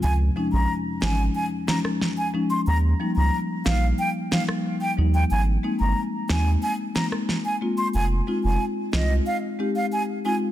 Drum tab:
SD |------o---oro---|------o---or----|------o---oro---|------o---------|